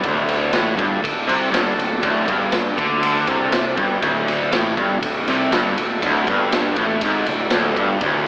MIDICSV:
0, 0, Header, 1, 5, 480
1, 0, Start_track
1, 0, Tempo, 498753
1, 39, Time_signature, 4, 2, 24, 8
1, 7965, End_track
2, 0, Start_track
2, 0, Title_t, "Tonewheel organ"
2, 0, Program_c, 0, 16
2, 9, Note_on_c, 0, 62, 71
2, 12, Note_on_c, 0, 66, 72
2, 21, Note_on_c, 0, 69, 70
2, 3823, Note_off_c, 0, 62, 0
2, 3826, Note_off_c, 0, 66, 0
2, 3829, Note_off_c, 0, 69, 0
2, 3862, Note_on_c, 0, 66, 71
2, 3873, Note_on_c, 0, 62, 68
2, 3880, Note_on_c, 0, 57, 74
2, 7671, Note_off_c, 0, 66, 0
2, 7675, Note_off_c, 0, 62, 0
2, 7679, Note_off_c, 0, 57, 0
2, 7716, Note_on_c, 0, 54, 71
2, 7727, Note_on_c, 0, 57, 75
2, 7731, Note_on_c, 0, 62, 74
2, 7734, Note_on_c, 0, 66, 71
2, 7965, Note_off_c, 0, 54, 0
2, 7965, Note_off_c, 0, 57, 0
2, 7965, Note_off_c, 0, 62, 0
2, 7965, Note_off_c, 0, 66, 0
2, 7965, End_track
3, 0, Start_track
3, 0, Title_t, "Overdriven electric guitar"
3, 0, Program_c, 1, 29
3, 62, Note_on_c, 1, 38, 107
3, 517, Note_off_c, 1, 38, 0
3, 521, Note_on_c, 1, 45, 92
3, 734, Note_off_c, 1, 45, 0
3, 737, Note_on_c, 1, 43, 94
3, 982, Note_off_c, 1, 43, 0
3, 987, Note_on_c, 1, 38, 77
3, 1186, Note_off_c, 1, 38, 0
3, 1225, Note_on_c, 1, 48, 107
3, 1455, Note_off_c, 1, 48, 0
3, 1459, Note_on_c, 1, 43, 103
3, 1693, Note_off_c, 1, 43, 0
3, 1697, Note_on_c, 1, 38, 70
3, 1900, Note_off_c, 1, 38, 0
3, 1951, Note_on_c, 1, 38, 107
3, 2188, Note_off_c, 1, 38, 0
3, 2194, Note_on_c, 1, 43, 102
3, 2669, Note_off_c, 1, 43, 0
3, 2673, Note_on_c, 1, 50, 88
3, 3148, Note_off_c, 1, 50, 0
3, 3154, Note_on_c, 1, 48, 96
3, 3621, Note_off_c, 1, 48, 0
3, 3624, Note_on_c, 1, 43, 85
3, 3859, Note_off_c, 1, 43, 0
3, 3863, Note_on_c, 1, 38, 103
3, 4342, Note_off_c, 1, 38, 0
3, 4360, Note_on_c, 1, 45, 104
3, 4589, Note_off_c, 1, 45, 0
3, 4593, Note_on_c, 1, 43, 97
3, 4817, Note_off_c, 1, 43, 0
3, 4821, Note_on_c, 1, 38, 61
3, 5020, Note_off_c, 1, 38, 0
3, 5087, Note_on_c, 1, 48, 90
3, 5314, Note_off_c, 1, 48, 0
3, 5332, Note_on_c, 1, 43, 98
3, 5556, Note_off_c, 1, 43, 0
3, 5577, Note_on_c, 1, 38, 64
3, 5758, Note_off_c, 1, 38, 0
3, 5825, Note_on_c, 1, 38, 112
3, 6043, Note_off_c, 1, 38, 0
3, 6060, Note_on_c, 1, 43, 100
3, 6520, Note_off_c, 1, 43, 0
3, 6524, Note_on_c, 1, 45, 94
3, 6752, Note_off_c, 1, 45, 0
3, 6770, Note_on_c, 1, 44, 97
3, 6995, Note_off_c, 1, 44, 0
3, 7016, Note_on_c, 1, 38, 75
3, 7198, Note_off_c, 1, 38, 0
3, 7251, Note_on_c, 1, 38, 107
3, 7476, Note_off_c, 1, 38, 0
3, 7484, Note_on_c, 1, 43, 96
3, 7713, Note_off_c, 1, 43, 0
3, 7724, Note_on_c, 1, 38, 113
3, 7965, Note_off_c, 1, 38, 0
3, 7965, End_track
4, 0, Start_track
4, 0, Title_t, "Fingered electric bass"
4, 0, Program_c, 2, 33
4, 42, Note_on_c, 2, 26, 89
4, 487, Note_off_c, 2, 26, 0
4, 503, Note_on_c, 2, 33, 89
4, 734, Note_off_c, 2, 33, 0
4, 766, Note_on_c, 2, 31, 94
4, 987, Note_off_c, 2, 31, 0
4, 1000, Note_on_c, 2, 26, 75
4, 1223, Note_off_c, 2, 26, 0
4, 1244, Note_on_c, 2, 36, 104
4, 1465, Note_off_c, 2, 36, 0
4, 1474, Note_on_c, 2, 31, 92
4, 1700, Note_off_c, 2, 31, 0
4, 1706, Note_on_c, 2, 26, 76
4, 1936, Note_off_c, 2, 26, 0
4, 1963, Note_on_c, 2, 26, 89
4, 2184, Note_off_c, 2, 26, 0
4, 2201, Note_on_c, 2, 31, 100
4, 2646, Note_off_c, 2, 31, 0
4, 2674, Note_on_c, 2, 38, 83
4, 3122, Note_off_c, 2, 38, 0
4, 3148, Note_on_c, 2, 36, 102
4, 3599, Note_off_c, 2, 36, 0
4, 3637, Note_on_c, 2, 31, 88
4, 3860, Note_off_c, 2, 31, 0
4, 3868, Note_on_c, 2, 26, 86
4, 4318, Note_off_c, 2, 26, 0
4, 4343, Note_on_c, 2, 33, 82
4, 4572, Note_off_c, 2, 33, 0
4, 4594, Note_on_c, 2, 31, 88
4, 4818, Note_off_c, 2, 31, 0
4, 4838, Note_on_c, 2, 26, 73
4, 5060, Note_off_c, 2, 26, 0
4, 5086, Note_on_c, 2, 36, 102
4, 5299, Note_off_c, 2, 36, 0
4, 5305, Note_on_c, 2, 31, 102
4, 5533, Note_off_c, 2, 31, 0
4, 5577, Note_on_c, 2, 26, 75
4, 5790, Note_off_c, 2, 26, 0
4, 5798, Note_on_c, 2, 26, 86
4, 6020, Note_off_c, 2, 26, 0
4, 6037, Note_on_c, 2, 31, 88
4, 6483, Note_off_c, 2, 31, 0
4, 6510, Note_on_c, 2, 33, 92
4, 6736, Note_off_c, 2, 33, 0
4, 6755, Note_on_c, 2, 32, 96
4, 6978, Note_off_c, 2, 32, 0
4, 7007, Note_on_c, 2, 26, 90
4, 7220, Note_off_c, 2, 26, 0
4, 7226, Note_on_c, 2, 26, 106
4, 7454, Note_off_c, 2, 26, 0
4, 7474, Note_on_c, 2, 31, 92
4, 7698, Note_off_c, 2, 31, 0
4, 7712, Note_on_c, 2, 26, 94
4, 7965, Note_off_c, 2, 26, 0
4, 7965, End_track
5, 0, Start_track
5, 0, Title_t, "Drums"
5, 33, Note_on_c, 9, 51, 84
5, 39, Note_on_c, 9, 36, 97
5, 129, Note_off_c, 9, 51, 0
5, 135, Note_off_c, 9, 36, 0
5, 274, Note_on_c, 9, 51, 66
5, 370, Note_off_c, 9, 51, 0
5, 508, Note_on_c, 9, 51, 83
5, 515, Note_on_c, 9, 38, 115
5, 604, Note_off_c, 9, 51, 0
5, 611, Note_off_c, 9, 38, 0
5, 756, Note_on_c, 9, 51, 70
5, 760, Note_on_c, 9, 36, 102
5, 852, Note_off_c, 9, 51, 0
5, 856, Note_off_c, 9, 36, 0
5, 1000, Note_on_c, 9, 36, 93
5, 1008, Note_on_c, 9, 51, 98
5, 1096, Note_off_c, 9, 36, 0
5, 1104, Note_off_c, 9, 51, 0
5, 1243, Note_on_c, 9, 51, 68
5, 1339, Note_off_c, 9, 51, 0
5, 1480, Note_on_c, 9, 51, 101
5, 1487, Note_on_c, 9, 38, 119
5, 1576, Note_off_c, 9, 51, 0
5, 1583, Note_off_c, 9, 38, 0
5, 1726, Note_on_c, 9, 51, 72
5, 1822, Note_off_c, 9, 51, 0
5, 1952, Note_on_c, 9, 51, 89
5, 1956, Note_on_c, 9, 36, 109
5, 2048, Note_off_c, 9, 51, 0
5, 2052, Note_off_c, 9, 36, 0
5, 2194, Note_on_c, 9, 36, 110
5, 2198, Note_on_c, 9, 51, 75
5, 2291, Note_off_c, 9, 36, 0
5, 2294, Note_off_c, 9, 51, 0
5, 2426, Note_on_c, 9, 51, 90
5, 2433, Note_on_c, 9, 38, 107
5, 2522, Note_off_c, 9, 51, 0
5, 2529, Note_off_c, 9, 38, 0
5, 2676, Note_on_c, 9, 36, 94
5, 2680, Note_on_c, 9, 51, 67
5, 2772, Note_off_c, 9, 36, 0
5, 2776, Note_off_c, 9, 51, 0
5, 2914, Note_on_c, 9, 51, 92
5, 3010, Note_off_c, 9, 51, 0
5, 3151, Note_on_c, 9, 36, 94
5, 3153, Note_on_c, 9, 51, 65
5, 3248, Note_off_c, 9, 36, 0
5, 3249, Note_off_c, 9, 51, 0
5, 3389, Note_on_c, 9, 51, 90
5, 3396, Note_on_c, 9, 38, 112
5, 3486, Note_off_c, 9, 51, 0
5, 3492, Note_off_c, 9, 38, 0
5, 3630, Note_on_c, 9, 51, 63
5, 3633, Note_on_c, 9, 36, 108
5, 3727, Note_off_c, 9, 51, 0
5, 3729, Note_off_c, 9, 36, 0
5, 3873, Note_on_c, 9, 51, 85
5, 3874, Note_on_c, 9, 36, 95
5, 3969, Note_off_c, 9, 51, 0
5, 3970, Note_off_c, 9, 36, 0
5, 4120, Note_on_c, 9, 51, 66
5, 4217, Note_off_c, 9, 51, 0
5, 4354, Note_on_c, 9, 51, 85
5, 4361, Note_on_c, 9, 38, 116
5, 4450, Note_off_c, 9, 51, 0
5, 4457, Note_off_c, 9, 38, 0
5, 4593, Note_on_c, 9, 36, 91
5, 4596, Note_on_c, 9, 51, 61
5, 4690, Note_off_c, 9, 36, 0
5, 4692, Note_off_c, 9, 51, 0
5, 4837, Note_on_c, 9, 36, 85
5, 4837, Note_on_c, 9, 51, 97
5, 4933, Note_off_c, 9, 36, 0
5, 4933, Note_off_c, 9, 51, 0
5, 5078, Note_on_c, 9, 51, 65
5, 5174, Note_off_c, 9, 51, 0
5, 5314, Note_on_c, 9, 51, 94
5, 5321, Note_on_c, 9, 38, 117
5, 5410, Note_off_c, 9, 51, 0
5, 5417, Note_off_c, 9, 38, 0
5, 5559, Note_on_c, 9, 51, 79
5, 5655, Note_off_c, 9, 51, 0
5, 5797, Note_on_c, 9, 36, 100
5, 5800, Note_on_c, 9, 51, 98
5, 5893, Note_off_c, 9, 36, 0
5, 5896, Note_off_c, 9, 51, 0
5, 6036, Note_on_c, 9, 36, 95
5, 6041, Note_on_c, 9, 51, 70
5, 6133, Note_off_c, 9, 36, 0
5, 6137, Note_off_c, 9, 51, 0
5, 6278, Note_on_c, 9, 51, 97
5, 6284, Note_on_c, 9, 38, 104
5, 6374, Note_off_c, 9, 51, 0
5, 6381, Note_off_c, 9, 38, 0
5, 6508, Note_on_c, 9, 51, 63
5, 6514, Note_on_c, 9, 36, 86
5, 6605, Note_off_c, 9, 51, 0
5, 6611, Note_off_c, 9, 36, 0
5, 6748, Note_on_c, 9, 51, 90
5, 6755, Note_on_c, 9, 36, 99
5, 6844, Note_off_c, 9, 51, 0
5, 6851, Note_off_c, 9, 36, 0
5, 6991, Note_on_c, 9, 51, 64
5, 7087, Note_off_c, 9, 51, 0
5, 7220, Note_on_c, 9, 51, 86
5, 7227, Note_on_c, 9, 38, 113
5, 7316, Note_off_c, 9, 51, 0
5, 7323, Note_off_c, 9, 38, 0
5, 7473, Note_on_c, 9, 36, 99
5, 7476, Note_on_c, 9, 51, 73
5, 7569, Note_off_c, 9, 36, 0
5, 7572, Note_off_c, 9, 51, 0
5, 7708, Note_on_c, 9, 51, 88
5, 7712, Note_on_c, 9, 36, 104
5, 7804, Note_off_c, 9, 51, 0
5, 7808, Note_off_c, 9, 36, 0
5, 7965, End_track
0, 0, End_of_file